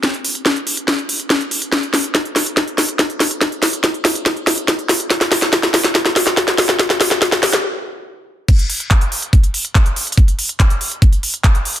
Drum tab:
CC |--------------------------------|--------------------------------|--------------------------------|--------------------------------|
HH |x-x-o-x-x-x-o-x-x-x-o-x-x-x-o-x-|x-x-o-x-x-x-o-x-x-x-o-x-x-x-o-x-|x-x-o-x-x-x-o-x-x-x-o-x-x-x-o-x-|x-x-o-x-x-x-o-x-x-x-o-x-x-x-o-x-|
CP |--------------------------------|--------------------------------|--------------------------------|--------------------------------|
SD |o-------o-------o-------o-------|o---o---o---o---o---o---o---o---|o---o---o---o---o---o---o---o---|o-o-o-o-o-o-o-o-o-o-o-o-o-o-o-o-|
BD |o-------o-------o-------o-------|o-------o-------o-------o-------|o-------o-------o-------o-------|o-------o-------o-------o-------|

CC |--------------------------------|x-------------------------------|--------------------------------|
HH |x-x-o-x-x-x-o-x-----------------|x-x-o-x-x-x-o-x-x-x-o-x-x-x-o-xx|x-x-o-x-x-x-o-x-x-x-o-x-x-x-o-x-|
CP |--------------------------------|--------x---------------x-------|--------x---------------x-------|
SD |o-o-o-o-o-o-o-o-----------------|--------------------------------|--------------------------------|
BD |o-------o-----------------------|o-------o-------o-------o-------|o-------o-------o-------o-------|